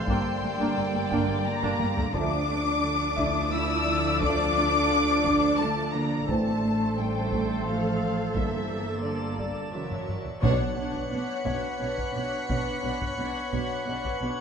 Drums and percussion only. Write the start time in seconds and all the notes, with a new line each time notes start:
0.08 taiko
1.11 taiko
1.63 taiko mid
1.80 taiko high
1.97 taiko low
2.14 taiko
3.18 taiko
4.22 taiko
5.25 taiko
6.29 taiko
7.32 taiko
8.35 taiko
9.39 taiko
9.91 taiko low-mid
10.08 taiko low-mid
10.26 taiko low
10.43 taiko
10.94 taiko
11.47 taiko
11.98 taiko
12.50 taiko
13.02 taiko
13.53 taiko
14.05 taiko